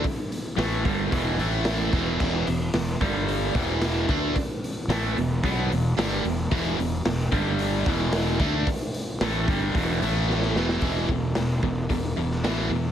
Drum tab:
CC |----------------|x---------------|----------------|----------------|
HH |o-o-o-o-o-o-o-o-|--o-o-o-o-o-o-o-|o-o-o-o-o-o-o-o-|o-o-o-o-o-o-o-o-|
SD |----o-------o---|----o-------o---|----o-------o---|----o-------o---|
BD |o-----o-o-----o-|o-----o---o---o-|o-------o-------|o-----o---o---o-|

CC |----------------|----------------|
HH |o-o-o-o-o-o-----|o---o---o---o---|
SD |----o-------oooo|-o--o------oo---|
BD |o-----o-o-------|o-o---o-o-------|